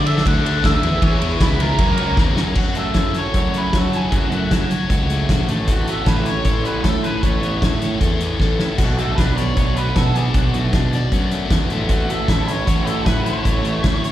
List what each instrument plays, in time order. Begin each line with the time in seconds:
Already playing: picked electric bass D3, overdriven electric guitar D3 A3 D4, string machine A4 D5 F#5 D6
0.06 overdriven electric guitar D3 F#3 A3 D4 F#4, lead electric guitar E5, ride
0.17 snare
0.25 picked electric bass D2, overdriven electric guitar D3 F#3 A3 D4, lead electric guitar F#5, kick, ride
0.44 overdriven electric guitar D3 F#3 A3 D4, ride
0.63 picked electric bass D2, overdriven electric guitar D3 F#3 A3 D4, lead electric guitar E5, kick, snare, ride
0.82 overdriven electric guitar E2 E3 G#3 B3 E4, picked electric bass E2, string machine G#4 E5 B5, ride
1.02 overdriven electric guitar E2 E3 G#3 B3 E4, picked electric bass E3, lead electric guitar C#5, kick, ride
1.21 picked electric bass E2, overdriven electric guitar G#3 B3 E4, ride
1.40 picked electric bass C#2, overdriven electric guitar E3 G#3 B3 E4, lead electric guitar B4, kick, snare, ride
1.60 overdriven electric guitar E3 G#3 B3 E4 F#4, lead electric guitar A#4, ride
1.78 overdriven electric guitar F#2 C#3 F#3 A#3 C#4, picked electric bass F#2, string machine A#4 C#5 C#6, kick, ride
1.97 picked electric bass C#2, overdriven electric guitar F#3 A#3 C#4, ride
2.16 picked electric bass E2, overdriven electric guitar F#2 C#3 F#3 A#3 C#4, kick, snare
2.36 picked electric bass F#2, overdriven electric guitar F#3 A#3 C#4, snare
2.55 overdriven electric guitar F#2 C#3 F#3 A3 C#4 F#4, picked electric bass F#2, lead electric guitar F#4, kick, crash
2.75 overdriven electric guitar A3, lead electric guitar A4, closed hi-hat
2.94 picked electric bass F#2, overdriven electric guitar E4, kick, snare, closed hi-hat
3.14 overdriven electric guitar C#5, closed hi-hat
3.18 lead electric guitar C#5
3.34 picked electric bass F#2, overdriven electric guitar F#4, kick, closed hi-hat
3.38 lead electric guitar C#5
3.54 overdriven electric guitar A3, lead electric guitar B4, closed hi-hat
3.73 picked electric bass F#3, overdriven electric guitar F#4, kick, snare, closed hi-hat
3.77 lead electric guitar A4
3.93 overdriven electric guitar E4, lead electric guitar G#4, closed hi-hat
4.12 picked electric bass F#2, overdriven electric guitar F#3, lead electric guitar F#4, kick, closed hi-hat
4.31 picked electric bass F#2, overdriven electric guitar A3, closed hi-hat
4.51 picked electric bass F#3, overdriven electric guitar E4, kick, snare, closed hi-hat
4.71 overdriven electric guitar C#5, closed hi-hat
4.89 picked electric bass C#2, overdriven electric guitar F#4, kick, closed hi-hat
5.10 overdriven electric guitar A3, closed hi-hat
5.29 picked electric bass A#1, overdriven electric guitar F#4, kick, snare, closed hi-hat
5.47 picked electric bass A1, overdriven electric guitar A2 E3 A3 C#4 A4, closed hi-hat
5.67 overdriven electric guitar A3, kick, closed hi-hat
5.72 lead electric guitar F#4
5.87 overdriven electric guitar B3, lead electric guitar A4, closed hi-hat
6.06 picked electric bass A1, overdriven electric guitar E4, lead electric guitar B4, kick, snare, closed hi-hat
6.25 lead electric guitar C#5, overdriven electric guitar C#5, closed hi-hat
6.44 picked electric bass A1, overdriven electric guitar A4, lead electric guitar C#5, kick, closed hi-hat
6.64 overdriven electric guitar B3, lead electric guitar B4, closed hi-hat
6.84 picked electric bass A2, lead electric guitar A4, overdriven electric guitar A4, kick, snare, closed hi-hat
7.03 overdriven electric guitar E4, lead electric guitar B4, closed hi-hat
7.23 picked electric bass A1, overdriven electric guitar A3, lead electric guitar C#5, kick, closed hi-hat
7.42 picked electric bass A1, overdriven electric guitar B3, closed hi-hat
7.62 picked electric bass A2, overdriven electric guitar E4, kick, snare, closed hi-hat
7.81 overdriven electric guitar C#5, closed hi-hat
8.01 picked electric bass E2, overdriven electric guitar A4, kick, closed hi-hat
8.20 overdriven electric guitar B3, closed hi-hat
8.40 picked electric bass A1, overdriven electric guitar A4, kick, snare
8.59 overdriven electric guitar E4, snare
8.78 picked electric bass B1, overdriven electric guitar B2 F#3 B3 D4 F#4, lead electric guitar F#4, kick, closed hi-hat, crash
8.97 overdriven electric guitar A3, lead electric guitar A4, closed hi-hat
9.16 picked electric bass B1, overdriven electric guitar D4, lead electric guitar B4, kick, snare, closed hi-hat
9.36 lead electric guitar C#5, overdriven electric guitar D5, closed hi-hat
9.56 picked electric bass B1, overdriven electric guitar F#4, lead electric guitar C#5, kick, closed hi-hat
9.76 overdriven electric guitar A3, lead electric guitar B4, closed hi-hat
9.95 picked electric bass B2, overdriven electric guitar F#4, lead electric guitar A4, kick, snare, closed hi-hat
10.15 overdriven electric guitar D4, lead electric guitar G#4, closed hi-hat
10.34 picked electric bass B1, overdriven electric guitar B2, lead electric guitar F#4, kick, closed hi-hat
10.54 picked electric bass B1, overdriven electric guitar A3, closed hi-hat
10.73 picked electric bass B2, overdriven electric guitar D4, kick, snare, closed hi-hat
10.93 overdriven electric guitar D5, closed hi-hat
11.12 picked electric bass F#2, overdriven electric guitar F#4, kick, closed hi-hat
11.31 overdriven electric guitar A3, closed hi-hat
11.50 picked electric bass E2, overdriven electric guitar F#4, kick, snare, closed hi-hat
11.70 picked electric bass A1, overdriven electric guitar A2 E3 A3 C#4 A4, closed hi-hat
11.89 overdriven electric guitar A3, lead electric guitar F#4, kick, closed hi-hat
12.10 overdriven electric guitar A3, lead electric guitar A4, closed hi-hat
12.28 picked electric bass A1, overdriven electric guitar E4, kick, snare, closed hi-hat
12.48 lead electric guitar C#5, overdriven electric guitar C#5, closed hi-hat
12.66 picked electric bass A1, overdriven electric guitar F#4, lead electric guitar C#5, kick, closed hi-hat
12.85 overdriven electric guitar A3, lead electric guitar A4, closed hi-hat
13.04 picked electric bass A2, overdriven electric guitar F#4, lead electric guitar B4, kick, snare, closed hi-hat
13.24 overdriven electric guitar E4, lead electric guitar C#5, closed hi-hat
13.44 picked electric bass A1, overdriven electric guitar A3, kick, closed hi-hat
13.63 picked electric bass A1, overdriven electric guitar A3, closed hi-hat
13.82 picked electric bass A2, overdriven electric guitar E4, kick, snare, closed hi-hat
14.02 overdriven electric guitar C#5, closed hi-hat